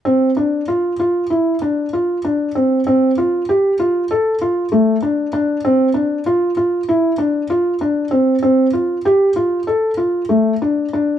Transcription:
\new Staff \with { instrumentName = "Felt piano" } { \time 9/8 \key d \minor \tempo 4. = 65 c'8 d'8 f'8 f'8 e'8 d'8 f'8 d'8 c'8 | c'8 f'8 g'8 f'8 a'8 f'8 a8 d'8 d'8 | c'8 d'8 f'8 f'8 e'8 d'8 f'8 d'8 c'8 | c'8 f'8 g'8 f'8 a'8 f'8 a8 d'8 d'8 | }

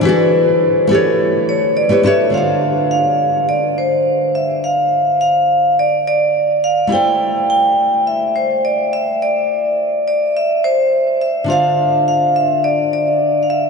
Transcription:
<<
  \new Staff \with { instrumentName = "Vibraphone" } { \time 4/4 \key e \minor \tempo 4 = 105 b'4. a'4 cis''8 d''8 e''8 | \key d \dorian f''4 f''4 d''8 c''4 e''8 | f''4 f''4 d''8 d''4 f''8 | g''4 g''4 e''8 c''8 d''8 e''8 |
d''4. d''8 e''8 c''4 e''8 | f''4 f''8 e''8 d''8 d''8.~ d''32 f''32 e''16. r32 | }
  \new Staff \with { instrumentName = "Nylon-string guitar" } { \time 4/4 \key e \minor <e e' fis' gis' d''>4. <a e' g' b' cis''>4.~ <a e' g' b' cis''>16 <a e' g' b' cis''>16 <a e' g' b' cis''>8 | \key d \dorian <d d' f' c'' f''>1~ | <d d' f' c'' f''>1 | <a e' g' a' c'' d''>1~ |
<a e' g' a' c'' d''>1 | <d d' f' c'' f''>1 | }
>>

